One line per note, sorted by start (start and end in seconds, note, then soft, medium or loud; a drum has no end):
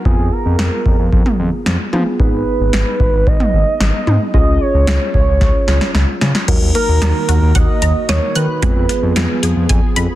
0.05 0.16 F2 loud
0.05 1.89 B3 medium
0.05 1.89 F4 medium
0.05 0.33 G#4 loud
0.05 1.89 G#4 medium
0.05 kick loud
0.19 0.29 F2 medium
0.32 1.39 A#4 loud
0.46 0.56 F2 loud
0.59 0.70 F2 loud
0.59 snare loud
0.86 0.96 F2 medium
0.86 kick medium
0.99 1.10 F2 medium
1.13 1.23 F2 loud
1.13 kick loud
1.26 mid tom medium
1.39 1.50 F2 loud
1.66 1.77 F2 loud
1.66 snare loud
1.93 2.04 F3 loud
1.93 2.18 B3 medium
1.93 2.20 F4 medium
1.93 2.18 G#4 medium
1.93 mid tom medium
2.20 2.30 G#1 loud
2.20 4.30 B3 medium
2.20 4.30 D#4 medium
2.20 4.30 G#4 medium
2.20 3.28 B4 loud
2.20 kick loud
2.33 2.44 G#1 loud
2.60 2.71 G#1 medium
2.73 2.84 G#1 loud
2.73 snare loud
3.00 3.11 G#1 loud
3.00 kick medium
3.13 3.24 G#1 loud
3.27 3.38 G#1 loud
3.27 4.33 D#5 loud
3.27 kick medium
3.40 mid tom medium
3.54 3.64 G#1 loud
3.80 3.91 G#1 loud
3.80 snare loud
4.07 4.18 G#2 medium
4.07 mid tom loud
4.34 4.45 C#2 loud
4.34 6.44 C#4 medium
4.34 6.44 F4 medium
4.34 6.44 G#4 medium
4.34 4.62 D#5 loud
4.34 kick loud
4.47 4.58 C#2 medium
4.61 5.14 C#5 loud
4.74 4.85 C#2 loud
4.87 4.98 C#2 loud
4.87 snare loud
5.14 5.25 C#2 medium
5.14 5.91 C#5 medium
5.14 kick medium
5.28 5.38 C#2 medium
5.41 5.52 C#2 loud
5.41 kick medium
5.41 snare medium
5.68 5.79 C#2 loud
5.68 snare medium
5.81 snare medium
5.95 6.05 C#2 loud
5.95 snare medium
6.21 6.32 C#3 loud
6.21 snare loud
6.35 snare medium
6.48 6.59 D#2 loud
6.48 8.60 D#3 medium
6.48 6.70 F#3 medium
6.48 8.60 A#3 medium
6.48 8.06 D#4 medium
6.48 8.06 F#4 medium
6.48 8.60 F#4 medium
6.48 8.06 A#4 medium
6.48 kick loud
6.48 closed hi-hat medium
6.48 crash medium
6.62 6.72 D#2 medium
6.75 6.97 A#3 medium
6.75 7.57 A#4 loud
6.75 closed hi-hat medium
6.88 6.99 D#2 medium
7.02 7.12 D#2 loud
7.02 7.24 D#4 medium
7.02 snare loud
7.02 closed hi-hat medium
7.28 7.39 D#2 loud
7.28 7.51 F#4 medium
7.28 closed hi-hat medium
7.42 7.53 D#2 loud
7.55 7.66 D#2 loud
7.55 8.08 D#5 loud
7.55 7.77 F#5 loud
7.55 kick loud
7.55 closed hi-hat medium
7.82 7.93 D#2 loud
7.82 8.04 A#5 medium
7.82 closed hi-hat medium
8.09 8.20 D#2 loud
8.09 8.62 D#4 medium
8.09 8.62 F#4 soft
8.09 8.62 A#4 medium
8.09 8.37 C#5 loud
8.09 8.31 D#6 medium
8.09 snare loud
8.09 closed hi-hat medium
8.36 8.46 D#3 loud
8.36 9.43 B4 medium
8.36 8.58 F#6 medium
8.36 closed hi-hat medium
8.62 8.73 F2 loud
8.62 10.15 F3 medium
8.62 8.85 G#3 medium
8.62 10.15 B3 medium
8.62 10.15 F4 medium
8.62 10.15 G#4 medium
8.62 kick loud
8.62 closed hi-hat medium
8.76 8.87 F2 medium
8.89 9.11 B3 medium
8.89 closed hi-hat medium
9.03 9.13 F2 loud
9.16 9.27 F2 loud
9.16 9.38 F4 medium
9.16 snare loud
9.16 closed hi-hat medium
9.43 9.54 F2 loud
9.43 9.65 G#4 medium
9.43 closed hi-hat medium
9.56 9.67 F2 medium
9.69 9.80 F2 loud
9.69 9.92 G#5 medium
9.69 kick loud
9.69 closed hi-hat medium
9.96 10.07 F2 loud
9.96 10.15 B5 medium
9.96 closed hi-hat medium